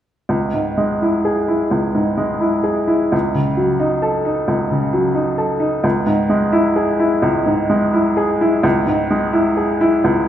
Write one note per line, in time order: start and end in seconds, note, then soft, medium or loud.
0.29 1.67 C#2 soft
0.54 0.92 G#2 soft
0.77 1.16 G#3 soft
1.02 1.39 E4 soft
1.25 1.62 G#4 soft
1.48 1.85 E4 soft
1.71 3.09 C#2 soft
1.95 2.33 G#2 soft
2.17 2.56 G#3 soft
2.41 2.80 E4 soft
2.63 3.03 G#4 soft
2.87 3.12 E4 soft
3.12 4.44 C#2 soft
3.34 3.71 C#3 soft
3.57 3.94 F#3 soft
3.80 4.16 D#4 soft
4.02 4.39 A4 soft
4.25 4.62 D#4 soft
4.48 5.80 C#2 soft
4.71 5.07 C#3 soft
4.93 5.29 F#3 soft
5.15 5.52 D#4 soft
5.38 5.75 A4 soft
5.60 5.84 D#4 soft
5.84 7.19 C#2 soft
6.07 6.44 G#2 soft
6.30 6.67 G#3 soft
6.52 6.90 E4 soft
6.76 7.14 G#4 soft
7.00 7.37 E4 soft
7.22 8.60 C#2 soft
7.46 7.85 G#2 soft
7.70 8.08 G#3 soft
7.93 8.32 E4 soft
8.17 8.55 G#4 soft
8.41 8.78 E4 soft
8.63 10.00 C#2 medium
8.87 9.24 G#2 soft
9.10 9.47 G#3 soft
9.33 9.71 E4 soft
9.57 9.95 G#4 soft
9.81 10.20 E4 soft
10.04 10.28 C#2 soft